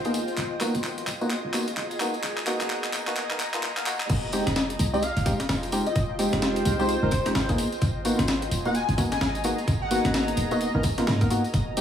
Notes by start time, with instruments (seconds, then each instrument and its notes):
Already playing: 808-style bass G#1, ambient pad F4 C5 D#5 G5
0.04 synth stab A#3 B3 D#4 G#4, closed hi-hat, tambourine
0.14 ambient pad G#4, open hi-hat, tambourine
0.27 closed hi-hat, tambourine
0.37 808-style bass G#1, clap, closed hi-hat, tambourine
0.61 synth stab A#3 B3 D#4 F#4, clap, open hi-hat, tambourine
0.65 ambient pad D#5
0.75 808-style bass G#1, closed hi-hat, tambourine
0.84 clap, tambourine
0.98 closed hi-hat
1.07 808-style bass D#1, clap, open hi-hat, tambourine
1.21 synth stab A#3 B3 D#4 F#4, tambourine
1.29 ambient pad A#5, clap, closed hi-hat, tambourine
1.44 808-style bass G#1
1.54 synth stab A#3 B3 D#4 F#4, clap, open hi-hat, tambourine
1.68 closed hi-hat, tambourine
1.77 808-style bass G#1, clap, tambourine
1.91 closed hi-hat, tambourine
2.00 synth stab A#3 B3 D#4 F#4, clap, open hi-hat, tambourine
2.14 closed hi-hat, tambourine
2.23 808-style bass G#1, clap, closed hi-hat, tambourine
2.38 clap, tambourine
2.47 synth stab A#3 B3 D#4 F#4, clap, open hi-hat, tambourine
2.61 808-style bass G#1, clap, closed hi-hat, tambourine
2.69 clap, tambourine
2.84 clap, closed hi-hat
2.93 808-style bass D#1, clap, open hi-hat, tambourine
3.07 synth stab A#3 B3 D#4 F#4, clap, closed hi-hat, tambourine
3.16 clap, closed hi-hat, tambourine
3.30 808-style bass G#1, synth stab A#3 B3 D#4 A#4, clap
3.40 clap, open hi-hat, tambourine
3.54 synth stab A#3 B3 D#4 F4, clap, closed hi-hat, tambourine
3.63 808-style bass G#2, clap, tambourine
3.77 synth stab A#3 B3 D#4 A#4, clap, closed hi-hat, tambourine
3.86 synth stab A#3 B3 D#4 F#4, clap, open hi-hat, tambourine
4.00 clap, closed hi-hat, tambourine
4.09 808-style bass F1, ambient pad F4 D#5, kick, closed hi-hat, crash, tambourine
4.32 synth stab G#3 C4 D#4 G4, open hi-hat, tambourine
4.47 808-style bass F1, ambient pad G5, snare, closed hi-hat, tambourine
4.56 ambient pad C5, snare, tambourine
4.70 closed hi-hat
4.79 808-style bass C2, open hi-hat, tambourine
4.93 synth stab G#3 C4 D#4 G4, digital synth lead D#5, tambourine
5.02 digital synth lead F5, closed hi-hat, tambourine
5.17 808-style bass F1, open hi-hat
5.26 synth stab G#3 C4 D#4 G4, kick, open hi-hat, tambourine
5.40 snare, closed hi-hat, tambourine
5.49 808-style bass F1, snare, tambourine
5.63 closed hi-hat, tambourine
5.72 synth stab G#3 C4 D#4 G4, open hi-hat, tambourine
5.86 digital synth lead D#5, closed hi-hat, tambourine
5.95 808-style bass F1, kick, closed hi-hat, tambourine
6.19 synth stab G#3 C4 D#4 G4, open hi-hat, tambourine
6.32 808-style bass F1, snare, closed hi-hat, tambourine
6.42 snare, tambourine
6.56 closed hi-hat
6.65 808-style bass C2, open hi-hat, tambourine
6.79 synth stab G#3 C4 D#4 G4, digital synth lead C5, tambourine
6.89 digital synth lead C5, closed hi-hat, tambourine
7.03 808-style bass F1, synth stab G#3 C4 D#4 A#4, digital synth lead C5
7.11 digital synth lead C5, kick, open hi-hat, tambourine
7.25 synth stab G#3 C4 D#4 G4, snare, closed hi-hat, tambourine
7.35 808-style bass G#1, snare, tambourine
7.49 synth stab A#3 B3 D#4 G#4, kick, closed hi-hat, tambourine
7.58 ambient pad G#4, open hi-hat, tambourine
7.72 closed hi-hat, tambourine
7.80 808-style bass G#1, ambient pad D#5 A#5, kick, closed hi-hat, tambourine
8.05 synth stab A#3 B3 D#4 F#4, open hi-hat, tambourine
8.19 808-style bass G#1, snare, closed hi-hat, tambourine
8.28 snare, tambourine
8.42 closed hi-hat
8.51 808-style bass D#1, open hi-hat, tambourine
8.65 synth stab A#3 B3 D#4 F#4, digital synth lead F#5, tambourine
8.75 digital synth lead G#5, closed hi-hat, tambourine
8.89 808-style bass G#1, open hi-hat
8.98 synth stab A#3 B3 D#4 F#4, kick, open hi-hat, tambourine
9.12 digital synth lead G#5, snare, closed hi-hat, tambourine
9.21 808-style bass G#1, digital synth lead G#5, snare, tambourine
9.35 closed hi-hat, tambourine
9.44 synth stab A#3 B3 D#4 F#4, open hi-hat, tambourine
9.58 closed hi-hat, tambourine
9.68 808-style bass G#1, kick, closed hi-hat, tambourine
9.82 digital synth lead F#5
9.91 synth stab A#3 B3 D#4 F#4, digital synth lead F#5, open hi-hat, tambourine
10.05 808-style bass G#1, snare, closed hi-hat, tambourine
10.14 snare, tambourine
10.28 closed hi-hat
10.37 808-style bass D#1, open hi-hat, tambourine
10.51 synth stab A#3 B3 D#4 F#4, digital synth lead D#5, closed hi-hat, tambourine
10.61 digital synth lead D#5, closed hi-hat, tambourine
10.75 808-style bass G#1, synth stab A#3 B3 D#4 A#4
10.83 kick, open hi-hat, tambourine
10.98 synth stab A#3 B3 D#4 F4, snare, closed hi-hat, tambourine
11.07 808-style bass G#2, snare, tambourine
11.21 synth stab A#3 B3 D#4 A#4, kick, closed hi-hat, tambourine
11.30 synth stab A#3 B3 D#4 F#4, open hi-hat, tambourine
11.44 closed hi-hat, tambourine
11.54 808-style bass F1, kick, closed hi-hat, tambourine
11.77 synth stab G#3 C4 D#4 G4, open hi-hat, tambourine